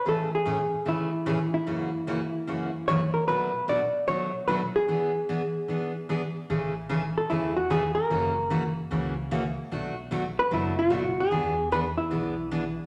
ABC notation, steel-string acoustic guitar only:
X:1
M:4/4
L:1/8
Q:"Swing" 1/4=149
K:A
V:1 name="Steel-string acoustic guitar"
[A,,C,E,A,CG] z [A,,C,E,A,CG] z [A,,C,E,A,CG] z [A,,C,E,A,CG] z | [F,,C,E,^A,CF] z [F,,C,E,A,CF] z [F,,C,E,A,CF] z [F,,C,E,A,CF] z | [B,,F,A,DF] z [B,,F,A,DF] z [B,,F,A,DF] z [B,,F,A,DF] z | [E,B,DG] z [E,B,DG] z [E,B,DG] z [E,B,DG] z |
[C,E,A,CG] z [C,E,A,CG] z [C,E,A,CG] z [C,E,A,CG] z | [C,E,^A,CF] z [C,E,A,CF] z [C,E,A,CF] z [C,E,A,CF] z | [B,,F,A,DF] z [B,,F,A,DF] z [B,,F,A,DF] z [B,,F,A,DF] z | [E,B,DG] z [E,B,DG] z [E,B,DG] z [E,B,DG] z |]